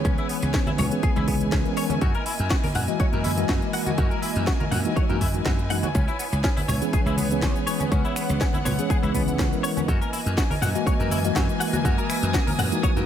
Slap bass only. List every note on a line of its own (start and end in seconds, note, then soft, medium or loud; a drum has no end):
0.05 0.16 C#2 medium
0.42 0.52 C#2 medium
0.79 0.89 C#2 medium
1.17 1.49 C#2 medium
1.52 1.63 C#2 medium
2.02 2.12 F#2 medium
2.39 2.49 F#2 medium
2.75 2.86 F#2 medium
3.00 muted slap bass stroke soft
3.13 3.46 F#2 medium
3.49 3.60 F#2 medium
3.98 4.09 F#2 medium
4.36 4.45 F#2 medium
4.72 4.83 F#2 medium
5.10 5.42 F#2 medium
5.46 5.80 F#2 medium
5.95 6.06 C#2 medium
6.32 6.42 C#2 medium
6.69 6.79 C#2 medium
6.93 muted slap bass stroke soft
7.06 7.39 C#2 medium
7.42 7.53 C#2 medium
7.92 8.02 C#2 medium
8.29 8.39 C#2 medium
8.65 8.76 C#2 medium
9.03 9.36 C#2 medium
9.39 9.50 C#2 medium
9.88 9.99 F#2 loud
10.26 10.35 F#2 medium
10.62 10.73 F#2 medium
10.87 muted slap bass stroke soft
11.00 11.32 F#2 medium
11.36 11.46 F#2 medium
11.85 11.96 F#2 medium
12.22 12.32 F#2 medium
12.59 12.69 F#2 medium
12.96 13.06 F#2 medium